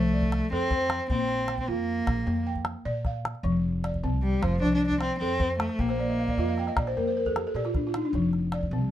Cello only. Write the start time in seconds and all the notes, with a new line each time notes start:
Already playing: A3
0.53 C4
1.11 C4
1.60 C4
1.68 A#3
4.23 G3
4.42 F3
4.62 D4
4.75 D4
4.87 D4
5.01 C4
5.19 C4
5.59 A3
5.80 A#3